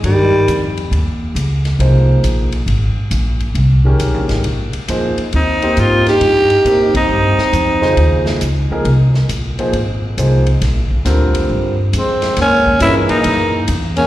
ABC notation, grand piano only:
X:1
M:4/4
L:1/8
Q:"Swing" 1/4=136
K:Cphr
V:1 name="Grand piano"
z8 | [F,B,EAc]3 z4 z | z [E,A,DGB]3 z2 [F,B,EAc] z | z [B,CEGc]3 z2 [B,CEGB] z |
z3 [D,FAce]3 z [F,B,EAB] | z3 [F,B,EAc] z2 [F,B,EAc] z | z2 [=D,G,CFB]3 z3 | [K:Ebphr] z2 [B,,F,EAB]3 z3 |]